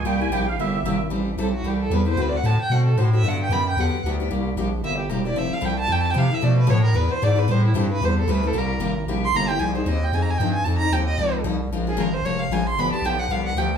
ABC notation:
X:1
M:4/4
L:1/16
Q:"Swing" 1/4=226
K:Cphr
V:1 name="Accordion"
g2 a2 g2 f2 =e6- e z | [K:Am] z16 | z16 | z16 |
z16 | z16 | z16 | z16 |
z16 | [K:Fm] z16 | z16 | z16 |
z16 |]
V:2 name="Violin"
z16 | [K:Am] z4 A2 ^F2 G2 A2 B2 c2 | (3B2 d2 ^f2 a2 g2 f2 A2 c2 e2 | ^f2 g2 b2 g2 f4 z4 |
z8 e2 G2 _B2 d2 | e2 f2 g2 a2 (3g2 a2 g2 f2 e2 | d2 B2 ^c2 _B2 =B2 =c2 d2 B2 | c2 E2 G2 B2 c2 A2 B2 A2 |
_B6 z4 c'2 _b2 g2 | [K:Fm] a2 c2 e2 g2 (3a2 b2 a2 g2 a2 | =a2 b2 g2 e4 z6 | z2 A2 B2 c2 d2 f2 a2 c'2 |
=b2 =a2 g2 _g2 f2 g2 =g2 z2 |]
V:3 name="Steel-string acoustic guitar"
[C,G,B,=EG]2 [B,EG]2 [C,G,B,EG]2 z2 [C,G,B,EG]2 z2 [C,G,B,EG]2 z2 | [K:Am] [E,G,CEA]2 z2 [E,G,CEA]2 z2 [E,G,CEA]2 z2 [E,G,CEA]2 [CEA]2 | [D,A,C^FA]2 z2 [D,A,CFA]2 z2 [D,A,CFA]2 z2 [D,A,CFA]2 [CFA]2 | [D,^F,B,DG]2 z2 [D,F,B,DG]2 z2 [D,F,B,DG]2 z2 [D,F,B,DG]2 [B,DG]2 |
[C,G,_B,EG]2 z2 [C,G,B,EG]2 z2 [C,G,B,EG]2 z2 [C,G,B,EG]2 [B,EG]2 | [F,CEA]2 z2 [F,CEA]2 z2 [F,CEA]2 z2 [F,CEA]2 [CEA]2 | [B,,F,A,DA]2 z2 [B,,F,A,DA]2 z2 [E,B,D^G]2 z2 [E,B,DG]2 [B,DG]2 | [E,G,CEA]2 z2 [E,G,CEA]2 z2 [E,G,CEA]2 z2 [E,G,CEA]2 [CEA]2 |
[C,G,_B,EG]2 z2 [C,G,B,EG]2 z2 [C,G,B,EG]2 z2 [C,G,B,EG]2 [B,EG]2 | [K:Fm] [F,CEA]2 [CEA]2 [F,CEA]2 z2 [F,CEA]2 z2 [F,CEA]2 z2 | [F,CE=A]2 [CEA]2 [F,CEA]2 z2 [F,CEA]2 z2 [F,CEA]2 z2 | [F,A,DFB]2 [DFB]2 [F,A,DFB]2 z2 [F,A,DFB]2 z2 [F,A,DFB]2 z2 |
[=D,F,=B,=DG]2 [B,DG]2 [D,F,B,DG]2 z2 [D,F,B,DG]2 z2 [D,F,B,DG]2 z2 |]
V:4 name="FM bass" clef=bass
C,,4 B,,,4 G,,,4 A,,,4 | [K:Am] A,,,4 B,,,4 C,,4 E,,4 | D,,4 A,,2 A,,2 B,,4 A,,4 | G,,4 ^F,,4 E,,2 E,,2 D,,4 |
C,,4 _B,,,4 G,,,4 E,,,4 | F,,,2 F,,,2 C,,4 F,,4 C,2 C,2 | B,,4 A,,4 E,,2 E,,2 ^G,,4 | A,,4 G,,4 E,,4 D,,4 |
C,,4 ^G,,,4 _B,,,4 =G,,,4 | [K:Fm] C,,4 E,,4 F,,4 G,,4 | F,,4 E,,4 D,,4 C,,4 | B,,,4 A,,,4 F,,,4 B,,,4 |
G,,,2 G,,,2 =B,,,4 C,,4 =D,,4 |]